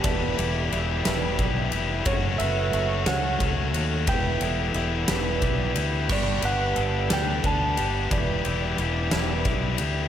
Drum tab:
CC |------|------|------|x-----|
RD |xxxxxx|xxxxxx|xxxxxx|-xxxxx|
SD |---o--|---o--|---o--|---o--|
BD |o---o-|o---o-|o---o-|o---o-|

CC |------|
RD |xxxxxx|
SD |---o--|
BD |o---o-|